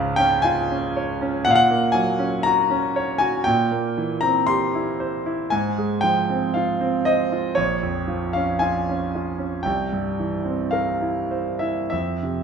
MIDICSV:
0, 0, Header, 1, 2, 480
1, 0, Start_track
1, 0, Tempo, 1005025
1, 1653, Time_signature, 4, 2, 24, 8
1, 1653, Tempo, 1032702
1, 4533, Tempo, 1083032
1, 5013, Tempo, 1204819
1, 5687, End_track
2, 0, Start_track
2, 0, Title_t, "Grand piano"
2, 0, Program_c, 0, 0
2, 0, Control_c, 0, 64, 127
2, 0, Note_on_c, 0, 37, 64
2, 0, Note_on_c, 0, 44, 43
2, 0, Note_on_c, 0, 49, 51
2, 0, Note_on_c, 0, 77, 94
2, 78, Note_on_c, 0, 79, 93
2, 87, Note_on_c, 0, 61, 47
2, 89, Note_off_c, 0, 77, 0
2, 163, Note_off_c, 0, 49, 0
2, 201, Note_on_c, 0, 80, 93
2, 206, Note_off_c, 0, 79, 0
2, 212, Note_on_c, 0, 65, 46
2, 284, Note_off_c, 0, 61, 0
2, 336, Note_on_c, 0, 61, 46
2, 405, Note_off_c, 0, 65, 0
2, 460, Note_on_c, 0, 73, 49
2, 526, Note_off_c, 0, 61, 0
2, 579, Note_on_c, 0, 61, 52
2, 647, Note_off_c, 0, 73, 0
2, 676, Note_off_c, 0, 37, 0
2, 685, Note_off_c, 0, 80, 0
2, 691, Note_on_c, 0, 78, 94
2, 695, Note_off_c, 0, 61, 0
2, 700, Control_c, 0, 64, 0
2, 701, Note_on_c, 0, 46, 61
2, 703, Note_off_c, 0, 44, 0
2, 720, Note_on_c, 0, 77, 81
2, 723, Note_off_c, 0, 78, 0
2, 742, Note_on_c, 0, 78, 95
2, 753, Note_off_c, 0, 77, 0
2, 768, Control_c, 0, 64, 127
2, 813, Note_on_c, 0, 58, 46
2, 916, Note_on_c, 0, 80, 89
2, 924, Note_off_c, 0, 78, 0
2, 928, Note_on_c, 0, 54, 44
2, 1004, Note_off_c, 0, 58, 0
2, 1045, Note_on_c, 0, 61, 47
2, 1122, Note_off_c, 0, 54, 0
2, 1162, Note_on_c, 0, 82, 91
2, 1164, Note_off_c, 0, 80, 0
2, 1176, Note_on_c, 0, 66, 50
2, 1241, Note_off_c, 0, 61, 0
2, 1291, Note_on_c, 0, 61, 54
2, 1366, Note_off_c, 0, 66, 0
2, 1413, Note_on_c, 0, 73, 56
2, 1484, Note_off_c, 0, 61, 0
2, 1521, Note_on_c, 0, 80, 85
2, 1528, Note_off_c, 0, 82, 0
2, 1530, Note_on_c, 0, 66, 47
2, 1606, Note_off_c, 0, 73, 0
2, 1639, Note_off_c, 0, 46, 0
2, 1643, Note_on_c, 0, 79, 85
2, 1648, Note_off_c, 0, 80, 0
2, 1652, Note_off_c, 0, 66, 0
2, 1656, Note_on_c, 0, 46, 58
2, 1660, Control_c, 0, 64, 0
2, 1730, Control_c, 0, 64, 127
2, 1771, Note_on_c, 0, 58, 39
2, 1892, Note_on_c, 0, 52, 46
2, 1964, Note_off_c, 0, 58, 0
2, 2000, Note_on_c, 0, 82, 83
2, 2007, Note_off_c, 0, 79, 0
2, 2009, Note_on_c, 0, 60, 45
2, 2084, Note_off_c, 0, 52, 0
2, 2120, Note_on_c, 0, 84, 89
2, 2125, Note_off_c, 0, 82, 0
2, 2128, Note_on_c, 0, 67, 49
2, 2201, Note_off_c, 0, 60, 0
2, 2251, Note_on_c, 0, 64, 46
2, 2320, Note_off_c, 0, 67, 0
2, 2368, Note_on_c, 0, 72, 46
2, 2442, Note_off_c, 0, 64, 0
2, 2489, Note_on_c, 0, 64, 46
2, 2562, Note_off_c, 0, 72, 0
2, 2594, Note_off_c, 0, 46, 0
2, 2602, Note_on_c, 0, 80, 82
2, 2606, Note_off_c, 0, 84, 0
2, 2610, Note_on_c, 0, 44, 54
2, 2611, Note_off_c, 0, 64, 0
2, 2619, Control_c, 0, 64, 0
2, 2684, Control_c, 0, 64, 127
2, 2732, Note_on_c, 0, 56, 36
2, 2837, Note_on_c, 0, 79, 81
2, 2849, Note_off_c, 0, 80, 0
2, 2850, Note_on_c, 0, 53, 40
2, 2926, Note_off_c, 0, 56, 0
2, 2972, Note_on_c, 0, 60, 39
2, 3044, Note_off_c, 0, 53, 0
2, 3083, Note_on_c, 0, 77, 64
2, 3085, Note_off_c, 0, 79, 0
2, 3094, Note_on_c, 0, 65, 47
2, 3164, Note_off_c, 0, 60, 0
2, 3209, Note_on_c, 0, 60, 48
2, 3285, Note_off_c, 0, 65, 0
2, 3322, Note_on_c, 0, 75, 82
2, 3327, Note_off_c, 0, 77, 0
2, 3330, Note_on_c, 0, 72, 45
2, 3401, Note_off_c, 0, 60, 0
2, 3447, Note_on_c, 0, 65, 40
2, 3522, Note_off_c, 0, 72, 0
2, 3551, Note_off_c, 0, 44, 0
2, 3553, Note_on_c, 0, 73, 72
2, 3564, Note_on_c, 0, 34, 50
2, 3566, Note_off_c, 0, 75, 0
2, 3569, Note_off_c, 0, 65, 0
2, 3579, Control_c, 0, 64, 0
2, 3642, Control_c, 0, 64, 127
2, 3684, Note_on_c, 0, 41, 37
2, 3798, Note_on_c, 0, 53, 38
2, 3882, Note_off_c, 0, 41, 0
2, 3917, Note_on_c, 0, 77, 70
2, 3925, Note_off_c, 0, 73, 0
2, 3930, Note_on_c, 0, 61, 37
2, 4000, Note_off_c, 0, 53, 0
2, 4038, Note_on_c, 0, 80, 73
2, 4047, Note_off_c, 0, 77, 0
2, 4048, Note_on_c, 0, 65, 41
2, 4125, Note_off_c, 0, 61, 0
2, 4177, Note_on_c, 0, 61, 38
2, 4243, Note_off_c, 0, 65, 0
2, 4298, Note_on_c, 0, 65, 34
2, 4366, Note_off_c, 0, 61, 0
2, 4406, Note_on_c, 0, 61, 34
2, 4487, Note_off_c, 0, 65, 0
2, 4512, Note_off_c, 0, 34, 0
2, 4519, Note_on_c, 0, 79, 61
2, 4525, Note_off_c, 0, 80, 0
2, 4531, Note_off_c, 0, 61, 0
2, 4532, Note_on_c, 0, 36, 46
2, 4542, Control_c, 0, 64, 0
2, 4610, Control_c, 0, 64, 127
2, 4652, Note_on_c, 0, 43, 33
2, 4772, Note_on_c, 0, 52, 36
2, 4844, Note_off_c, 0, 43, 0
2, 4886, Note_on_c, 0, 60, 33
2, 4966, Note_off_c, 0, 52, 0
2, 4998, Note_on_c, 0, 77, 65
2, 5007, Note_off_c, 0, 79, 0
2, 5007, Note_on_c, 0, 70, 35
2, 5079, Note_off_c, 0, 60, 0
2, 5122, Note_on_c, 0, 64, 34
2, 5192, Note_off_c, 0, 70, 0
2, 5240, Note_on_c, 0, 72, 38
2, 5310, Note_off_c, 0, 64, 0
2, 5352, Note_on_c, 0, 76, 56
2, 5354, Note_off_c, 0, 77, 0
2, 5360, Note_on_c, 0, 64, 32
2, 5433, Note_off_c, 0, 72, 0
2, 5467, Note_off_c, 0, 36, 0
2, 5468, Note_off_c, 0, 76, 0
2, 5474, Note_on_c, 0, 76, 58
2, 5484, Note_off_c, 0, 64, 0
2, 5484, Note_on_c, 0, 41, 37
2, 5491, Control_c, 0, 64, 0
2, 5568, Control_c, 0, 64, 127
2, 5606, Note_on_c, 0, 48, 28
2, 5687, Note_off_c, 0, 41, 0
2, 5687, Note_off_c, 0, 48, 0
2, 5687, Note_off_c, 0, 76, 0
2, 5687, End_track
0, 0, End_of_file